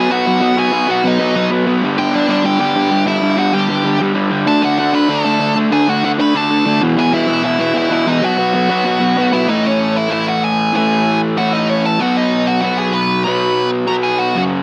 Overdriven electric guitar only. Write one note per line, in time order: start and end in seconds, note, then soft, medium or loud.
0.00 0.11 B3 loud
0.10 0.26 B2 medium
0.10 0.26 F#3 medium
0.10 0.26 B3 loud
0.26 0.40 B2 medium
0.26 0.40 F#3 loud
0.26 0.42 B3 medium
0.41 0.57 B2 loud
0.41 0.56 F#3 loud
0.41 0.56 B3 loud
0.57 0.70 B2 medium
0.57 0.71 F#3 medium
0.57 0.73 B3 loud
0.72 0.88 B2 loud
0.72 0.87 F#3 loud
0.72 0.87 B3 loud
0.88 1.03 B2 medium
0.88 1.03 F#3 medium
0.88 1.05 B3 medium
1.04 1.20 B2 medium
1.04 1.19 F#3 medium
1.04 1.19 B3 medium
1.19 1.34 B2 medium
1.19 1.34 F#3 loud
1.19 1.35 B3 loud
1.35 1.51 B2 medium
1.35 1.50 F#3 medium
1.35 1.50 B3 medium
1.51 1.65 B2 medium
1.51 1.65 F#3 medium
1.51 1.67 B3 loud
1.66 1.80 B2 loud
1.66 1.81 F#3 loud
1.66 4.47 B3 loud
1.82 1.98 G2 loud
1.82 1.97 D3 loud
1.82 1.97 G3 loud
1.97 2.12 G2 medium
1.97 2.11 D3 loud
1.97 2.13 G3 loud
2.12 2.29 G2 medium
2.12 2.27 D3 medium
2.12 2.28 G3 medium
2.28 2.44 G2 medium
2.28 2.43 D3 medium
2.28 2.45 G3 medium
2.44 2.59 G2 loud
2.44 2.59 D3 loud
2.44 2.58 G3 loud
2.59 2.74 G2 medium
2.59 2.75 D3 medium
2.59 2.75 G3 loud
2.75 2.91 G2 medium
2.75 2.91 D3 loud
2.75 2.90 G3 loud
2.91 3.05 G2 medium
2.91 3.05 D3 loud
2.91 3.06 G3 loud
3.06 3.21 G2 medium
3.06 3.20 D3 medium
3.06 3.20 G3 loud
3.21 3.36 G2 medium
3.21 3.36 D3 loud
3.21 3.36 G3 loud
3.37 3.52 G2 medium
3.37 3.53 D3 medium
3.37 3.51 G3 loud
3.53 3.68 G2 medium
3.53 3.69 D3 medium
3.53 3.69 G3 loud
3.69 3.84 G2 medium
3.69 3.83 D3 loud
3.69 3.83 G3 loud
3.84 3.99 G2 medium
3.84 4.00 D3 medium
3.84 4.00 G3 medium
4.00 4.15 G2 medium
4.00 4.14 D3 medium
4.00 4.13 G3 loud
4.14 4.29 G2 medium
4.14 4.30 D3 loud
4.14 4.30 G3 loud
4.30 4.45 G2 medium
4.30 4.45 D3 medium
4.30 4.46 G3 loud
4.46 4.64 D3 medium
4.46 4.64 A3 loud
4.46 4.63 D4 loud
4.63 4.78 D3 medium
4.63 4.79 A3 medium
4.63 4.79 D4 loud
4.79 4.94 D3 medium
4.79 4.93 A3 medium
4.79 4.92 D4 medium
4.93 5.07 D3 medium
4.93 5.08 A3 loud
4.93 5.08 D4 loud
5.09 5.25 D3 medium
5.09 5.24 A3 medium
5.09 5.24 D4 medium
5.25 5.38 D3 medium
5.25 5.39 A3 medium
5.25 5.40 D4 loud
5.40 5.56 D3 loud
5.40 5.56 A3 loud
5.40 5.55 D4 loud
5.56 5.71 D3 medium
5.56 5.71 A3 medium
5.56 5.72 D4 medium
5.72 5.88 D3 loud
5.72 5.88 A3 loud
5.72 5.87 D4 loud
5.88 6.03 D3 medium
5.88 6.04 A3 medium
5.88 6.04 D4 loud
6.04 6.19 D3 medium
6.04 6.19 A3 medium
6.04 6.18 D4 medium
6.19 6.33 D3 medium
6.19 6.34 A3 loud
6.19 6.34 D4 loud
6.34 6.50 D3 medium
6.34 6.50 A3 medium
6.34 6.49 D4 loud
6.51 6.65 D3 medium
6.51 6.65 A3 medium
6.51 6.66 D4 medium
6.66 6.80 D3 loud
6.66 6.81 A3 loud
6.66 6.81 D4 loud
6.81 6.97 E2 loud
6.81 6.96 B2 loud
6.81 6.96 E3 loud
6.97 7.11 E2 medium
6.97 7.12 B2 loud
6.97 7.12 E3 loud
7.12 7.28 E2 loud
7.12 7.27 B2 medium
7.12 7.26 E3 loud
7.27 7.42 E2 medium
7.27 7.42 B2 medium
7.27 7.43 E3 medium
7.43 7.59 E2 medium
7.43 7.58 B2 loud
7.43 7.57 E3 loud
7.58 7.72 E2 medium
7.58 7.73 B2 medium
7.58 7.73 E3 medium
7.73 7.90 E2 loud
7.73 7.89 B2 loud
7.73 7.89 E3 loud
7.90 8.05 E2 medium
7.90 8.06 B2 loud
7.90 8.06 E3 loud
8.06 8.21 E2 medium
8.06 8.20 B2 loud
8.06 8.22 E3 medium
8.21 8.38 B2 loud
8.21 8.37 F#3 loud
8.21 8.37 B3 loud
8.38 8.52 B2 medium
8.38 8.54 F#3 medium
8.38 8.54 B3 medium
8.53 8.70 B2 medium
8.53 8.69 F#3 medium
8.53 8.69 B3 medium
8.70 8.84 B2 medium
8.70 8.84 F#3 loud
8.70 8.85 B3 loud
8.85 9.00 B2 medium
8.85 8.99 F#3 medium
8.85 8.99 B3 medium
9.00 9.15 B2 medium
9.00 9.16 F#3 loud
9.00 9.17 B3 loud
9.16 9.32 B2 medium
9.16 9.32 F#3 loud
9.16 9.31 B3 loud
9.32 9.47 B2 medium
9.32 9.47 F#3 medium
9.32 9.47 B3 loud
9.47 10.08 A2 medium
9.47 10.10 E3 loud
9.47 10.11 A3 loud
10.09 10.72 A2 medium
10.09 10.73 E3 medium
10.09 10.74 A3 medium
10.73 11.35 A2 medium
10.73 11.37 E3 loud
10.73 11.37 A3 loud
11.36 11.99 A2 medium
11.36 11.99 E3 medium
11.36 12.00 A3 medium
11.99 12.61 B2 loud
11.99 12.64 F#3 loud
11.99 12.63 B3 loud
12.62 13.24 B2 medium
12.62 13.27 F#3 medium
12.62 13.26 B3 medium
13.25 13.86 B2 loud
13.25 13.88 F#3 loud
13.25 13.88 B3 medium
13.87 14.34 B2 medium
13.87 14.38 F#3 medium
13.87 14.35 B3 medium
14.35 14.63 F#2 medium
14.35 14.63 C#3 medium
14.35 14.63 F#3 loud